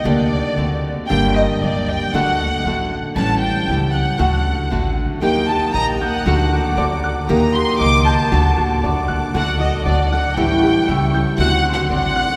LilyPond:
<<
  \new Staff \with { instrumentName = "Violin section" } { \time 2/4 \key d \phrygian \tempo 4 = 116 << { r2 | r2 | r2 | r2 |
r2 | <g'' ees'''>2 | <fis'' d'''>2 | <g'' ees'''>2 |
<fis'' d'''>2~ | <fis'' d'''>2 | <g'' cis'''>2 | <d'' c'''>2 | } \\ { r2 | r2 | r2 | r2 |
r2 | bes'2 | a'2 | bes'2 |
a'2~ | a'2~ | a'2 | fis'2 | } >> }
  \new Staff \with { instrumentName = "Violin section" } { \time 2/4 \key d \phrygian d''4. r8 | g''8 ees''8 d''8 g''8 | fis''4. r8 | a''8 g''4 fis''8~ |
fis''4. r8 | g''8 a''8 bes''8 fis''8~ | fis''4 r4 | bes''8 c'''8 d'''8 a''8~ |
a''4 r4 | fis''8 ees''8 d''8 fis''8 | g''4. r8 | \tuplet 3/2 { fis''8. r16 fis''8 } fis''4 | }
  \new Staff \with { instrumentName = "Harp" } { \time 2/4 \key d \phrygian r2 | r2 | r2 | r2 |
r2 | g'8 g'8 ees''8 g'''8 | fis'8 fis'8 d''8 fis'''8 | g'8 g'8 ees''8 g'''8 |
fis'8 fis'8 d''8 fis'''8 | fis'8 fis'8 d''8 fis'''8 | g'8 g'8 e''8 g'''8 | fis'8 fis'8 d''8 fis'''8 | }
  \new Staff \with { instrumentName = "Nylon-string guitar" } { \time 2/4 \key d \phrygian <d bes d' g'>4 <d a c' fis'>4 | <g, d g bes d' g'>4 <g bes d' g'>4 | <d a d' fis'>4 <d a d' fis'>4 | <a, e g cis' g'>4 <e g cis' g'>8 <g cis' g'>8 |
<d a d' fis'>4 <d a d' fis'>4 | <ees bes ees' g'>4 <ees bes ees' g'>8 <bes ees' g'>8 | <d a d' fis'>4 <d a d' fis'>4 | <ees bes ees' g'>4 <ees bes ees' g'>4 |
<d a d' fis'>4 <d a d' fis'>4 | <d a d' fis'>4 <d a d' fis'>8 <a d' fis'>8 | <a, e g cis' e'>4 <e g cis' e'>8 <g cis' e'>8 | <d a c' fis'>4 <d a c' fis'>4 | }
  \new Staff \with { instrumentName = "Upright bass" } { \clef bass \time 2/4 \key d \phrygian d,4 d,4 | g,,4 d,4 | d,4 a,,4 | a,,4 cis,4 |
d,4 a,,4 | ees,4 bes,,4 | d,4 d,4 | ees,4 cis,4 |
d,8 a,8 fis,8 d,8 | d,4 d,4 | a,,4 cis,4 | d,4 a,,4 | }
>>